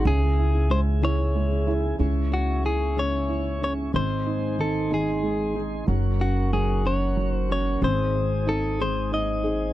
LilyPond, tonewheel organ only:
\new Staff \with { instrumentName = "Tonewheel organ" } { \time 6/8 \key cis \minor \tempo 4. = 62 << { <e'' gis''>2. | <e'' cis'''>2. | <dis'' bis''>2. | <fis'' cis'''>2. |
<gis'' dis'''>2. | } \\ { gis'2. | gis''2.~ | gis''2. | ais'2. |
bis'2. | } >> }